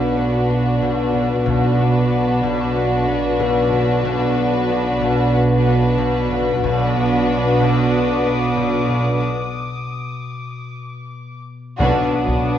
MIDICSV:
0, 0, Header, 1, 11, 480
1, 0, Start_track
1, 0, Key_signature, 2, "minor"
1, 0, Tempo, 645161
1, 1097, Time_signature, 4, 2, 24, 8
1, 9363, End_track
2, 0, Start_track
2, 0, Title_t, "Violin section"
2, 0, Program_c, 0, 48
2, 4949, Note_on_c, 0, 86, 41
2, 4957, Note_on_c, 0, 87, 41
2, 8037, Note_off_c, 0, 87, 0
2, 8513, Note_off_c, 0, 86, 0
2, 8777, Note_on_c, 0, 87, 34
2, 8779, Note_on_c, 0, 86, 32
2, 9363, Note_off_c, 0, 86, 0
2, 9363, Note_off_c, 0, 87, 0
2, 9363, End_track
3, 0, Start_track
3, 0, Title_t, "Felt piano"
3, 0, Program_c, 1, 0
3, 0, Control_c, 1, 64, 127
3, 0, Note_on_c, 1, 74, 40
3, 585, Note_off_c, 1, 74, 0
3, 2536, Note_on_c, 1, 71, 35
3, 3947, Note_off_c, 1, 71, 0
3, 8791, Control_c, 1, 64, 0
3, 8922, Control_c, 1, 64, 127
3, 9363, End_track
4, 0, Start_track
4, 0, Title_t, "Violin section"
4, 0, Program_c, 2, 48
4, 0, Note_on_c, 2, 71, 36
4, 1069, Note_off_c, 2, 71, 0
4, 1103, Note_on_c, 2, 71, 50
4, 4910, Note_off_c, 2, 71, 0
4, 4942, Note_on_c, 2, 71, 54
4, 6829, Note_off_c, 2, 71, 0
4, 8778, Note_on_c, 2, 71, 53
4, 9363, Note_off_c, 2, 71, 0
4, 9363, End_track
5, 0, Start_track
5, 0, Title_t, "Violin section"
5, 0, Program_c, 3, 48
5, 0, Note_on_c, 3, 66, 33
5, 1066, Note_off_c, 3, 66, 0
5, 1093, Note_on_c, 3, 66, 42
5, 4905, Note_off_c, 3, 66, 0
5, 4928, Note_on_c, 3, 66, 47
5, 6823, Note_off_c, 3, 66, 0
5, 8777, Note_on_c, 3, 66, 51
5, 9363, Note_off_c, 3, 66, 0
5, 9363, End_track
6, 0, Start_track
6, 0, Title_t, "Viola section"
6, 0, Program_c, 4, 48
6, 0, Note_on_c, 4, 62, 33
6, 1060, Note_off_c, 4, 62, 0
6, 1094, Note_on_c, 4, 62, 43
6, 4905, Note_off_c, 4, 62, 0
6, 4932, Note_on_c, 4, 62, 48
6, 6824, Note_off_c, 4, 62, 0
6, 8766, Note_on_c, 4, 62, 49
6, 9363, Note_off_c, 4, 62, 0
6, 9363, End_track
7, 0, Start_track
7, 0, Title_t, "Harp"
7, 0, Program_c, 5, 46
7, 0, Note_on_c, 5, 47, 50
7, 0, Note_on_c, 5, 59, 37
7, 123, Note_off_c, 5, 59, 0
7, 132, Note_on_c, 5, 59, 35
7, 363, Note_off_c, 5, 59, 0
7, 371, Note_on_c, 5, 59, 34
7, 603, Note_off_c, 5, 47, 0
7, 612, Note_on_c, 5, 47, 51
7, 841, Note_off_c, 5, 47, 0
7, 850, Note_on_c, 5, 47, 36
7, 1076, Note_off_c, 5, 47, 0
7, 1085, Note_on_c, 5, 47, 56
7, 1326, Note_off_c, 5, 59, 0
7, 1335, Note_on_c, 5, 59, 40
7, 1559, Note_off_c, 5, 59, 0
7, 1568, Note_on_c, 5, 59, 39
7, 1803, Note_off_c, 5, 47, 0
7, 1812, Note_on_c, 5, 47, 56
7, 2045, Note_off_c, 5, 59, 0
7, 2054, Note_on_c, 5, 59, 39
7, 2283, Note_off_c, 5, 59, 0
7, 2291, Note_on_c, 5, 59, 43
7, 2520, Note_off_c, 5, 47, 0
7, 2528, Note_on_c, 5, 47, 57
7, 2763, Note_off_c, 5, 47, 0
7, 2772, Note_on_c, 5, 47, 47
7, 3005, Note_off_c, 5, 47, 0
7, 3014, Note_on_c, 5, 47, 59
7, 3245, Note_off_c, 5, 59, 0
7, 3254, Note_on_c, 5, 59, 43
7, 3481, Note_off_c, 5, 59, 0
7, 3490, Note_on_c, 5, 59, 44
7, 3721, Note_off_c, 5, 47, 0
7, 3730, Note_on_c, 5, 47, 61
7, 3966, Note_off_c, 5, 59, 0
7, 3975, Note_on_c, 5, 59, 43
7, 4207, Note_off_c, 5, 59, 0
7, 4216, Note_on_c, 5, 59, 44
7, 4442, Note_off_c, 5, 47, 0
7, 4451, Note_on_c, 5, 47, 57
7, 4685, Note_off_c, 5, 47, 0
7, 4694, Note_on_c, 5, 47, 47
7, 4930, Note_off_c, 5, 47, 0
7, 4939, Note_on_c, 5, 47, 61
7, 5172, Note_off_c, 5, 59, 0
7, 5181, Note_on_c, 5, 59, 44
7, 5409, Note_off_c, 5, 59, 0
7, 5418, Note_on_c, 5, 59, 41
7, 5652, Note_off_c, 5, 47, 0
7, 5661, Note_on_c, 5, 47, 59
7, 5890, Note_off_c, 5, 59, 0
7, 5899, Note_on_c, 5, 59, 38
7, 6136, Note_off_c, 5, 59, 0
7, 6145, Note_on_c, 5, 59, 38
7, 6365, Note_off_c, 5, 47, 0
7, 6374, Note_on_c, 5, 47, 45
7, 6609, Note_off_c, 5, 47, 0
7, 6618, Note_on_c, 5, 47, 34
7, 8769, Note_off_c, 5, 47, 0
7, 8777, Note_on_c, 5, 47, 46
7, 9009, Note_off_c, 5, 59, 0
7, 9018, Note_on_c, 5, 59, 37
7, 9250, Note_off_c, 5, 59, 0
7, 9259, Note_on_c, 5, 59, 33
7, 9363, Note_off_c, 5, 47, 0
7, 9363, Note_off_c, 5, 59, 0
7, 9363, End_track
8, 0, Start_track
8, 0, Title_t, "French horn section"
8, 0, Program_c, 6, 60
8, 8783, Note_on_c, 6, 62, 53
8, 8784, Note_on_c, 6, 54, 50
8, 9363, Note_off_c, 6, 54, 0
8, 9363, Note_off_c, 6, 62, 0
8, 9363, End_track
9, 0, Start_track
9, 0, Title_t, "Cello section"
9, 0, Program_c, 7, 48
9, 0, Note_on_c, 7, 47, 36
9, 1067, Note_off_c, 7, 47, 0
9, 1091, Note_on_c, 7, 47, 48
9, 4904, Note_off_c, 7, 47, 0
9, 4939, Note_on_c, 7, 47, 52
9, 6828, Note_off_c, 7, 47, 0
9, 8771, Note_on_c, 7, 47, 55
9, 9363, Note_off_c, 7, 47, 0
9, 9363, End_track
10, 0, Start_track
10, 0, Title_t, "Double bass section"
10, 0, Program_c, 8, 48
10, 0, Note_on_c, 8, 35, 36
10, 1061, Note_off_c, 8, 35, 0
10, 1089, Note_on_c, 8, 35, 50
10, 4903, Note_off_c, 8, 35, 0
10, 4933, Note_on_c, 8, 35, 56
10, 6825, Note_off_c, 8, 35, 0
10, 8772, Note_on_c, 8, 35, 61
10, 9363, Note_off_c, 8, 35, 0
10, 9363, End_track
11, 0, Start_track
11, 0, Title_t, "Taiko and cinematic ensemble drums"
11, 1096, Note_on_c, 9, 41, 45
11, 1170, Note_off_c, 9, 41, 0
11, 4939, Note_on_c, 9, 41, 50
11, 5013, Note_off_c, 9, 41, 0
11, 8776, Note_on_c, 9, 41, 72
11, 8850, Note_off_c, 9, 41, 0
11, 9136, Note_on_c, 9, 41, 65
11, 9210, Note_off_c, 9, 41, 0
11, 9363, End_track
0, 0, End_of_file